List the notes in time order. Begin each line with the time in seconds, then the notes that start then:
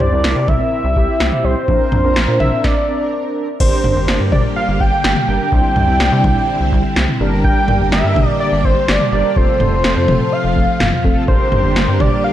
0.00 C2 D5, mid tom
0.12 C2 C4 E4 A#4
0.24 C2, snare
0.36 C3
0.48 C2 E5, kick, mid tom
0.84 C2
0.96 C2 C4 E4 G4, kick
1.20 C2, snare
1.32 mid tom
1.44 C2 C5
1.68 A#1 C4 D4 A#4, kick
1.92 A#1, mid tom
2.04 A#1 C4 D4 A#4
2.16 A#1, snare
2.28 A#2
2.40 A#1 E5, mid tom
2.64 D5, kick, snare
2.88 C4 D4 A#4
3.60 G1 D3 G3 A#3 D4 G4 A#4 C5, kick, crash
3.84 G1 D4 G4 A#4, mid tom
3.96 G1
4.08 G1, snare
4.20 G2
4.32 G1 D5, kick, mid tom
4.56 F5
4.68 G1
4.80 G1 G5, kick
5.04 G1, snare
5.16 mid tom
5.28 G1 D4 G4 A#4 G5
5.52 C2 D3 C4 D4 E4 C5, kick
5.76 C2 D4 E4 D5, mid tom
5.88 C2
6.00 C2, snare
6.12 C3
6.24 C2, kick, mid tom
6.60 C2
6.72 C2, kick
6.96 C2, snare
7.08 mid tom
7.20 G1 D3 A#3 D4 G4 A#4
7.44 G5, kick
7.68 G1 D4 G4 A#4, mid tom
7.80 G1
7.92 G1 E5, snare
8.04 G2
8.16 G1, kick, mid tom
8.40 D5
8.52 G1
8.64 G1 C5, kick
8.88 G1 D5, snare
9.00 mid tom
9.12 G1 D4 G4 A#4 D5
9.36 F1 C3 F3 A3 C4 F4 A4 C5, kick
9.60 F1 C4 F4 A4, mid tom
9.72 F1
9.84 F1, snare
9.96 F2
10.08 F1, mid tom
10.32 F5
10.44 F1
10.56 F1, kick
10.80 F1, snare, mid tom
10.92 mid tom
11.04 F1 C4 F4 A4, kick
11.28 G1 D3 G3 A#3 D4 G4 A#4 C5, kick
11.52 G1 D4 G4 A#4, mid tom
11.64 G1
11.76 G1, snare
11.88 G2
12.00 G1 D5, kick, mid tom
12.24 F5